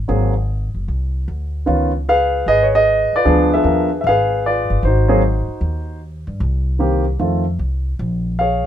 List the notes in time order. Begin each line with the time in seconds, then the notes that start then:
0.08 G#1 F#3 A#3 C4 G#4
0.74 F#1
0.88 C2
1.28 D2
1.66 C#2 D#3 B3 C#4 F4
2.09 G#4 B4 F5
2.46 G#1 G#4 B4 D#5
2.63 C#5
2.75 G#4 B4 D#5
3.13 F4 B4 D5, muted upright bass stroke
3.25 D2 F3 B3 D4 G#4
3.54 G#4 B4 E5
3.64 D#2 F3 B3 D4 A#4
4.01 G#1 E5
4.07 G#4 B4 F5
4.46 F4 B4 D5
4.70 G1
4.83 G#1 D#4 C5
4.87 F#4
5.08 F#3 A#3 C4 G#4
5.48 muted upright bass stroke
5.61 D#2
6.27 G2
6.40 C2
6.79 D#3 A#3 C4 G4
7.19 F2 D#3 A3 C4 F4
7.59 C2
7.99 A#1
8.39 G#4 C#5 F5